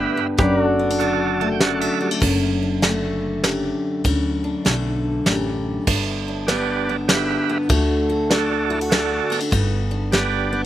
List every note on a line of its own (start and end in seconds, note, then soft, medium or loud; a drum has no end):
0.00 0.16 G2 medium
0.00 0.18 A2 medium
0.00 0.99 D3 medium
0.00 0.37 B3 medium
0.00 0.79 D4 medium
0.00 0.27 G4 medium
0.00 0.36 G4 medium
0.00 0.37 G4 medium
0.00 0.27 B4 medium
0.00 0.37 B4 medium
0.00 0.38 D5 medium
0.00 0.28 E5 medium
0.17 0.38 G2 medium
0.38 1.87 F#1 medium
0.38 1.60 F#2 medium
0.38 2.19 F#4 medium
0.38 0.59 G4 medium
0.38 0.65 B4 medium
0.38 2.21 D5 medium
0.38 kick loud
0.38 closed hi-hat medium
0.59 2.20 F#4 medium
0.65 2.20 A4 medium
0.79 0.90 B3 medium
0.90 1.61 D4 soft
0.99 2.81 D3 medium
0.99 1.48 F#4 medium
0.99 1.49 A4 medium
0.99 1.49 D5 medium
0.99 closed hi-hat medium
1.40 2.00 A3 medium
1.40 1.50 A5 medium
1.52 1.61 G5 medium
1.60 2.19 F#2 medium
1.60 1.81 B3 medium
1.60 2.09 F#4 medium
1.60 2.10 A4 medium
1.60 2.00 D5 medium
1.60 1.79 F#5 medium
1.60 snare loud
1.60 closed hi-hat medium
1.81 2.22 D4 soft
1.81 1.99 E5 medium
2.01 2.11 G3 medium
2.01 2.20 D5 medium
2.11 2.21 A3 medium
2.21 3.70 F#1 medium
2.21 3.43 F#2 medium
2.21 kick loud
2.21 crash loud
2.63 4.44 D4 soft
2.82 4.64 D3 medium
2.82 4.02 A3 medium
2.82 snare medium
2.82 ride medium
3.44 4.02 F#2 medium
3.44 4.02 G4 medium
3.44 snare medium
3.44 ride medium
4.04 4.54 D2 medium
4.04 5.25 F#2 medium
4.04 kick loud
4.04 ride medium
4.44 5.84 D4 medium
4.65 5.17 B1 medium
4.65 6.48 D3 medium
4.65 5.85 A3 medium
4.65 snare medium
4.65 ride medium
5.26 5.78 A1 medium
5.26 5.84 F#2 medium
5.26 5.85 G4 medium
5.26 snare medium
5.26 ride medium
5.87 7.35 G1 medium
5.87 7.67 G2 medium
5.87 6.49 B3 medium
5.87 kick loud
5.87 crash medium
6.28 6.89 D4 medium
6.47 7.08 D3 medium
6.47 7.48 B3 medium
6.47 6.96 G4 medium
6.47 6.97 B4 medium
6.47 6.97 D5 medium
6.47 snare medium
6.47 ride medium
6.89 7.70 D4 medium
7.08 7.68 D3 medium
7.08 7.57 G4 medium
7.08 7.58 B4 medium
7.08 7.58 E5 medium
7.08 snare medium
7.08 ride medium
7.49 7.67 B3 medium
7.69 9.18 D2 medium
7.69 10.11 D3 medium
7.69 8.30 A3 medium
7.69 8.31 D4 medium
7.69 8.08 F#4 medium
7.69 kick loud
7.69 ride medium
8.10 8.70 F#4 medium
8.30 8.90 A3 medium
8.30 9.30 D4 medium
8.30 8.79 F#4 medium
8.30 8.80 A4 medium
8.30 8.80 D5 medium
8.30 snare medium
8.30 ride medium
8.70 8.81 E4 medium
8.81 9.52 F#4 medium
8.90 9.50 A3 medium
8.90 9.39 F#4 medium
8.90 9.40 A4 medium
8.90 9.40 D5 medium
8.90 snare medium
8.90 ride medium
9.30 9.40 B3 medium
9.30 ride medium
9.40 9.51 D4 medium
9.51 10.66 G1 medium
9.51 10.66 G2 medium
9.51 10.13 B3 medium
9.51 kick loud
9.51 ride medium
9.91 10.52 D4 medium
10.12 10.66 D3 medium
10.12 10.53 B3 medium
10.12 10.61 G4 medium
10.12 10.62 B4 medium
10.12 10.62 D5 medium
10.12 snare medium
10.12 ride medium
10.53 10.64 B3 medium